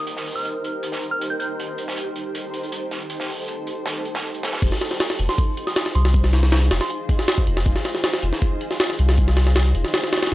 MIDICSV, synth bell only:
0, 0, Header, 1, 2, 480
1, 0, Start_track
1, 0, Key_signature, -4, "minor"
1, 0, Tempo, 379747
1, 85, Time_signature, 4, 2, 24, 8
1, 13074, End_track
2, 0, Start_track
2, 0, Title_t, "Synth bell"
2, 0, Program_c, 0, 98
2, 449, Note_on_c, 0, 89, 85
2, 1119, Note_off_c, 0, 89, 0
2, 1406, Note_on_c, 0, 89, 89
2, 1622, Note_off_c, 0, 89, 0
2, 1644, Note_on_c, 0, 91, 82
2, 1721, Note_off_c, 0, 91, 0
2, 1765, Note_on_c, 0, 91, 73
2, 1843, Note_off_c, 0, 91, 0
2, 6686, Note_on_c, 0, 84, 93
2, 6973, Note_off_c, 0, 84, 0
2, 7166, Note_on_c, 0, 87, 88
2, 7500, Note_off_c, 0, 87, 0
2, 7524, Note_on_c, 0, 84, 90
2, 8004, Note_off_c, 0, 84, 0
2, 8606, Note_on_c, 0, 84, 93
2, 9277, Note_off_c, 0, 84, 0
2, 13074, End_track
0, 0, End_of_file